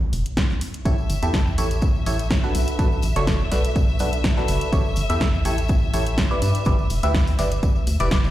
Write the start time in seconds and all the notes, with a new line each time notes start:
Already playing: G1
0.13 E1, open hi-hat
0.26 closed hi-hat
0.37 kick, snare, closed hi-hat
0.50 snare
0.61 open hi-hat
0.74 closed hi-hat
0.85 A1 E4 G4 A4 C#5 E5, kick, closed hi-hat, tambourine
0.98 tambourine
1.10 G1, open hi-hat, tambourine
1.23 E2 E4 G4 A4 E5, closed hi-hat, tambourine
1.34 kick, snare, closed hi-hat, tambourine
1.47 tambourine
1.58 A1 E4 G4 A4 C#5, open hi-hat, tambourine
1.71 closed hi-hat, tambourine
1.82 kick, closed hi-hat, tambourine
1.95 tambourine
2.06 A1 E4 G4 A4 C#5, open hi-hat, tambourine
2.19 closed hi-hat, tambourine
2.30 kick, snare, closed hi-hat, tambourine
2.43 D4 F#4 A4 B4, tambourine
2.55 B1, open hi-hat, tambourine
2.68 closed hi-hat, tambourine
2.79 B1 D4 F#4 A4 B4, kick, closed hi-hat, tambourine
2.92 tambourine
3.02 A1, open hi-hat, tambourine
3.16 F#1 D4 F#4 A4 C#5, closed hi-hat, tambourine
3.27 kick, snare, closed hi-hat, tambourine
3.40 tambourine
3.52 B1 D4 F#4 A4 B4, snare, open hi-hat, tambourine
3.65 closed hi-hat, tambourine
3.76 kick, closed hi-hat, tambourine
3.89 tambourine
3.99 B1 D4 F#4 A4 B4, open hi-hat, tambourine
4.13 closed hi-hat, tambourine
4.24 kick, snare, closed hi-hat, tambourine
4.37 D4 F#4 A4 B4, snare, tambourine
4.48 F#1, open hi-hat, tambourine
4.61 closed hi-hat, tambourine
4.73 A1 E4 G4 A4 C#5, kick, closed hi-hat, tambourine
4.85 tambourine
4.96 G1, open hi-hat, tambourine
5.09 E2 E4 G4 A4 E5, closed hi-hat, tambourine
5.20 kick, snare, closed hi-hat, tambourine
5.34 tambourine
5.45 A1 E4 G4 A4 C#5, open hi-hat, tambourine
5.58 closed hi-hat, tambourine
5.68 kick, closed hi-hat, tambourine
5.83 tambourine
5.94 A1 E4 G4 A4 C#5, open hi-hat, tambourine
6.07 closed hi-hat, tambourine
6.18 kick, snare, closed hi-hat, tambourine
6.31 E4 G4 B4 D5, tambourine
6.42 G2, open hi-hat, tambourine
6.55 closed hi-hat, tambourine
6.65 G1 E4 G4 B4 D5, kick, closed hi-hat, tambourine
6.79 tambourine
6.90 E1, open hi-hat, tambourine
7.03 D2 E4 G4 B4 E5, closed hi-hat, tambourine
7.14 kick, snare, closed hi-hat, tambourine
7.27 open hi-hat, tambourine
7.39 G1 E4 G4 B4 D5, snare, open hi-hat, tambourine
7.51 closed hi-hat, tambourine
7.63 kick, closed hi-hat, tambourine
7.76 tambourine
7.87 D2, open hi-hat, tambourine
8.00 E1 E4 G4 B4 D5, closed hi-hat, tambourine
8.11 kick, snare, closed hi-hat, tambourine
8.24 G1, snare, tambourine